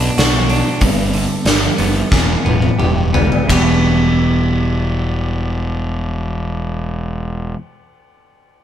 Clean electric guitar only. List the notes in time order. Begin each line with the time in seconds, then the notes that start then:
Already playing: B2 D4
0.18 F#4
0.50 D4
0.82 G2
1.14 D3
1.46 G3
1.78 B3
2.12 E2
2.45 B3
2.79 G4
3.13 B3
3.48 E2 B2 E3 G3 B3 G4